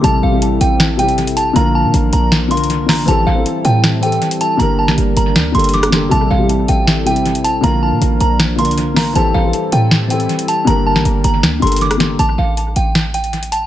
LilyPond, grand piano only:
\new Staff \with { instrumentName = "Grand piano" } { \time 4/4 \key a \phrygian \tempo 4 = 158 <c g e' a'>8 r16 <c g e' g'>4 r8. <c g e' g'>4 r8 | <d bes f' bes'>4~ <d bes f' bes'>16 r4 r16 <d bes f' bes'>8. r16 <d bes f' bes'>16 r16 | <e c' g' a'>8 r16 <e c' g' a'>4 r8. <e c' g' a'>4 r8 | <d bes g' bes'>4~ <d bes g' bes'>16 r4 r16 <d bes g' a'>8. r16 <d bes g' a'>16 r16 |
<c g e' a'>8 r16 <c g e' g'>4 r8. <c g e' g'>4 r8 | <d bes f' bes'>4~ <d bes f' bes'>16 r4 r16 <d bes f' bes'>8. r16 <d bes f' bes'>16 r16 | <e c' g' a'>8 r16 <e c' g' a'>4 r8. <e c' g' a'>4 r8 | <d bes g' bes'>4~ <d bes g' bes'>16 r4 r16 <d bes g' a'>8. r16 <d bes g' a'>16 r16 |
r1 | }